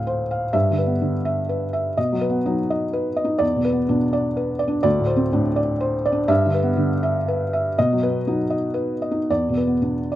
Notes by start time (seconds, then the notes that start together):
Already playing: D2 A2 C4 C5 F5
0.07 C5
0.31 F5
0.53 G2 E5
0.70 D3
0.79 B4
0.86 B3
1.01 D3
1.25 E5
1.49 B4
1.73 E5
1.97 B2 D#5
2.12 F#3
2.21 B4
2.30 B3
2.46 F#3 D#4
2.70 D#5
2.93 B4
3.16 D#5
3.24 D#4
3.39 E2 D5
3.56 B2
3.65 B4
3.72 B3
3.89 B2 D4
4.13 D5
4.37 B4
4.59 D5
4.68 D4
4.83 D2 D5
4.99 A2
5.06 C5
5.16 C4
5.33 A2 D4
5.56 D5
5.81 C5
6.06 D5
6.12 D4
6.28 G2 E5
6.46 D3
6.54 B4
6.62 B3
6.77 D3
7.03 E5
7.28 B4
7.53 E5
7.78 B2 D#5
7.93 F#3
8.03 B4
8.27 F#3 D#4
8.50 D#5
8.74 B4
9.02 D#5
9.11 D#4
9.30 E2 D5
9.49 B2
9.57 B4
9.67 B3
9.82 B2 D4
10.12 D5